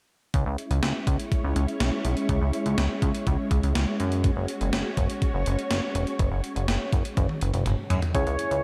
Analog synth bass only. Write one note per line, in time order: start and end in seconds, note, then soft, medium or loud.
0.34 0.44 C#2 loud
0.46 0.57 C#2 medium
0.71 0.81 C#2 medium
0.83 0.93 C#2 loud
1.07 1.17 C#2 medium
1.44 1.54 C#2 medium
1.56 1.66 C#2 loud
1.80 1.91 B1 medium
2.05 2.15 B1 medium
2.29 2.39 C#2 loud
2.41 2.52 C#2 medium
2.66 2.76 C#2 medium
2.78 2.88 C#2 loud
3.02 3.13 C#2 medium
3.27 3.37 C#2 medium
3.51 3.61 C#2 loud
3.63 3.74 C#2 medium
3.76 3.86 C#2 loud
4.00 4.31 F#2 loud
4.37 4.47 F#1 medium
4.61 4.71 F#1 loud
4.73 4.83 F#1 medium
4.97 5.08 F#1 medium
5.34 5.44 F#1 loud
5.46 5.57 F#1 loud
5.71 5.81 F#1 medium
5.95 6.05 E1 medium
6.19 6.30 F#1 loud
6.31 6.42 F#1 medium
6.56 6.66 F#1 medium
6.68 6.78 F#1 loud
6.93 7.03 F#1 medium
7.17 7.27 F#1 loud
7.41 7.52 F#1 loud
7.54 7.64 F#1 medium
7.66 7.76 F#1 loud
7.90 8.00 F#2 loud
8.15 8.25 C#2 loud
8.27 8.37 C#2 medium
8.51 8.62 C#2 medium